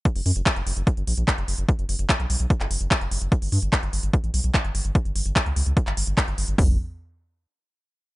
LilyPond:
<<
  \new Staff \with { instrumentName = "Analog synth bass" } { \clef bass \time 4/4 \tempo 4 = 147 r16 fis,,16 fis,16 fis,,16 r16 fis,,16 fis,,16 fis,,16 r16 g,,16 ais,,16 ais,,16 r16 fis,,16 fis,,16 fis,,16 | r16 fis,,16 fis,,16 fis,,16 r16 b,,16 b,,16 b,,16 r16 fis,,16 fis,,16 fis,,16 r16 fis,,16 fis,,16 fis,,16 | r16 g,,16 g,16 g,,16 r16 g,,16 g,,16 g,,16 r16 a,,16 b,,16 b,,16 r16 g,,16 g,,16 g,,16 | r16 g,,16 g,,16 g,,16 r16 cis,16 cis,16 cis,16 r16 g,,16 g,,16 g,,16 r16 g,,16 g,,16 g,,16 |
fis,,8 r2. r8 | }
  \new DrumStaff \with { instrumentName = "Drums" } \drummode { \time 4/4 <hh bd>16 hho16 hho16 hh16 <hc hh bd>16 hh16 hho16 hh16 <hh bd>16 hh16 hho16 hh16 <hc hh bd>16 hh16 hho16 hh16 | <hh bd>16 hh16 hho16 hh16 <hc hh bd>16 hh16 hho16 hh16 <hh bd>16 <hc hh>16 hho16 hh16 <hc hh bd>16 hh16 hho16 hh16 | <hh bd>16 hho16 hho16 hh16 <hc hh bd>16 hh16 hho16 hh16 <hh bd>16 hh16 hho16 hh16 <hc hh bd>16 hh16 hho16 hh16 | <hh bd>16 hh16 hho16 hh16 <hc hh bd>16 hh16 hho16 hh16 <hh bd>16 <hc hh>16 hho16 hh16 <hc hh bd>16 hh16 hho16 hh16 |
<hho bd tomfh>4 r4 r4 r4 | }
>>